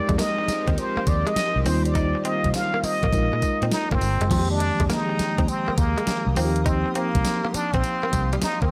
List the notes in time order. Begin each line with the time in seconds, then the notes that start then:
Already playing: F3 G#3 C4 D#4 G4 A#4 D5
0.09 F2 G#3, kick, closed hi-hat
0.18 A#3 D#5, snare, closed hi-hat, tambourine
0.38 muted clean electric guitar stroke
0.48 muted fingered electric bass stroke, snare, closed hi-hat, tambourine
0.68 D#2 C4, kick, closed hi-hat
0.78 C5, closed hi-hat, tambourine
0.97 A#3, muted fingered electric bass stroke
1.07 D#2 D5, muted clean electric guitar stroke, kick, closed hi-hat, tambourine
1.27 G#3 D#5, closed hi-hat
1.36 muted fingered electric bass stroke, snare, closed hi-hat, tambourine
1.56 C2
1.66 D#2 D#3 G3 A#3 C4 D#4 F4 C5, open hi-hat, tambourine
1.85 D5, closed hi-hat
1.95 D#4, kick, closed hi-hat, tambourine
2.15 muted clean electric guitar stroke
2.25 C4 D#5, closed hi-hat
2.44 C2, kick, closed hi-hat
2.54 F5, snare, closed hi-hat, tambourine
2.74 A#3
2.83 D#5, muted fingered electric bass stroke, muted clean electric guitar stroke, open hi-hat, tambourine
3.03 A#1 A#3, kick, closed hi-hat
3.12 A#1 G#3 D#4 F4 A#4, kick, closed hi-hat, tambourine
3.33 A#2 G#3
3.42 muted clean electric guitar stroke, kick, closed hi-hat, tambourine
3.62 A#2 C4, closed hi-hat
3.71 D#4, snare, closed hi-hat, tambourine
3.91 G#1 A#3 C4, kick
4.01 G1, muted clean electric guitar stroke, open hi-hat, tambourine
4.21 F#1 G#3, closed hi-hat
4.30 F2 D#3 F3 G#3 A#3 C4 F4 G5 A#5 D#6, kick, closed hi-hat, crash, tambourine
4.39 G4
4.51 D4
4.60 muted clean electric guitar stroke, closed hi-hat
4.80 F2 G#3, kick, closed hi-hat
4.90 A#3 D#4, snare, closed hi-hat, tambourine
5.09 muted clean electric guitar stroke
5.19 muted fingered electric bass stroke, snare, closed hi-hat, tambourine
5.38 D#2 C4, kick, closed hi-hat
5.48 C4, closed hi-hat, tambourine
5.68 A#3, muted fingered electric bass stroke
5.78 D#2 A#3, muted clean electric guitar stroke, kick, closed hi-hat, tambourine
5.98 G#3, closed hi-hat
6.07 muted fingered electric bass stroke, snare, closed hi-hat, tambourine
6.27 C2
6.36 D#2 F3 A#3 C4 D#4 F4 G4 F5 C6 D#6, open hi-hat, tambourine
6.45 G4
6.56 closed hi-hat
6.66 C4 D#4, kick, closed hi-hat, tambourine
6.86 muted clean electric guitar stroke
6.95 A#3 C4, closed hi-hat
7.15 C2, kick, closed hi-hat
7.25 snare, closed hi-hat, tambourine
7.45 A#3
7.54 D4, muted fingered electric bass stroke, muted clean electric guitar stroke, closed hi-hat, tambourine
7.74 A#1 C4, kick, closed hi-hat
7.84 closed hi-hat, tambourine
8.03 A#3
8.13 C2, muted clean electric guitar stroke, kick, closed hi-hat, tambourine
8.33 G3, closed hi-hat
8.42 D#4, muted fingered electric bass stroke, snare, closed hi-hat, tambourine
8.62 D#2 A#3 C4, kick